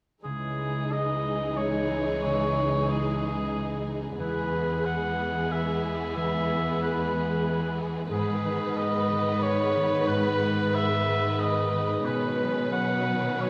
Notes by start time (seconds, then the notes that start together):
0.24 C#2 C#3 E3 G#3 D#4 G#4
0.58 G#3
0.92 D#5
1.26 G#3
1.57 G#4 C#5
1.91 G#3
2.24 C#3 C#5
2.57 C#4
2.89 G#4 D#5
3.22 G#3
3.55 G#4
3.87 G#3
4.18 E2 E3 G#3 B3 G#4 B4
4.53 B3
4.85 B4 F#5
5.18 B3
5.51 G#4 E5
5.83 B3
6.16 E3 E5
6.49 E4
6.82 B4
7.14 B3
7.46 G#4
7.79 B3
8.11 G#2 D#3 G#3 B3 G#4 B4
8.45 D#3
8.77 B4 D#5
9.11 D#3
9.43 G#4 C#5
9.76 D#3
10.08 G#2 B4
10.75 B4 E5
11.09 D#3
11.39 G#4 D#5
11.74 D#3
12.05 B2 D#3 C#4 B4
12.40 F#3
12.72 F#3 B4 F#5
13.08 F#3
13.41 F#4 C#5